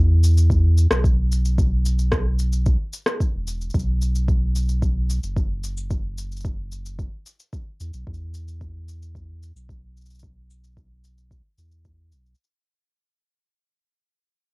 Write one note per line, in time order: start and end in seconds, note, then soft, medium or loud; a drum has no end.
0.00 0.87 E2 loud
0.24 shaker medium
0.38 shaker soft
0.50 kick loud
0.50 shaker soft
0.78 shaker medium
0.91 2.76 B1 medium
0.91 cross-stick medium
0.91 shaker soft
1.04 kick loud
1.04 shaker soft
1.32 shaker medium
1.45 shaker soft
1.58 kick loud
1.58 shaker soft
1.86 shaker medium
1.99 shaker soft
2.12 kick loud
2.12 cross-stick medium
2.12 shaker soft
2.39 shaker medium
2.53 shaker soft
2.66 kick loud
2.66 shaker soft
2.93 shaker medium
3.06 cross-stick medium
3.06 shaker soft
3.20 kick loud
3.20 shaker soft
3.34 3.71 E1 medium
3.47 shaker medium
3.61 shaker soft
3.70 shaker soft
3.74 5.19 B1 loud
3.74 kick medium
3.74 shaker soft
3.79 shaker soft
4.02 shaker medium
4.15 shaker soft
4.28 kick loud
4.28 shaker soft
4.56 shaker medium
4.69 shaker soft
4.82 kick loud
4.82 shaker soft
5.10 shaker medium
5.23 7.09 F#1 medium
5.23 shaker soft
5.37 kick loud
5.37 shaker soft
5.64 shaker medium
5.77 shaker soft
5.91 kick medium
5.91 shaker soft
6.18 shaker medium
6.32 shaker soft
6.36 shaker soft
6.40 shaker soft
6.45 kick medium
6.45 shaker soft
6.72 shaker medium
6.86 shaker soft
6.99 kick medium
6.99 shaker soft
7.26 shaker medium
7.40 shaker soft
7.53 kick medium
7.53 shaker soft
7.80 7.91 E2 medium
7.80 shaker medium
7.93 8.05 B1 medium
7.93 shaker soft
8.07 9.52 E2 loud
8.07 kick medium
8.14 shaker soft
8.34 shaker medium
8.48 shaker soft
8.61 kick medium
8.61 shaker soft
8.88 shaker medium
9.03 shaker soft
9.15 kick medium
9.15 shaker soft
9.43 shaker medium
9.55 11.41 B1 medium
9.55 shaker soft
9.69 kick medium
9.69 shaker soft
9.97 shaker soft
10.01 shaker soft
10.05 shaker soft
10.10 shaker soft
10.15 shaker soft
10.19 kick medium
10.19 shaker medium
10.50 shaker medium
10.64 shaker soft
10.77 kick medium
10.77 shaker soft
11.04 shaker medium
11.18 shaker soft
11.31 kick medium
11.31 shaker soft
11.58 12.13 E2 medium
11.58 shaker medium
11.71 shaker soft
11.85 kick medium
11.85 shaker soft
12.12 12.34 B1 medium
12.12 shaker medium
12.26 shaker soft
12.35 shaker soft
12.44 shaker soft